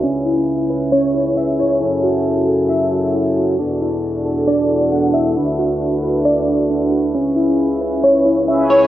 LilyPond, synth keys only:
\new Staff \with { instrumentName = "Synth keys" } { \time 4/4 \key cis \phrygian \tempo 4 = 135 cis'8 e'4 b'8 cis'8 e'8 cis'8 e'8 | e'8 fis'4 a'8 e'8 fis'8 e'8 fis'8 | d'8 e'4 a'8 d'8 e'8 d'8 e'8 | d'8 fis'4 b'8 d'8 fis'8 d'8 fis'8 |
cis'8 e'4 b'8 cis'8 e'8 cis'8 e'8 | }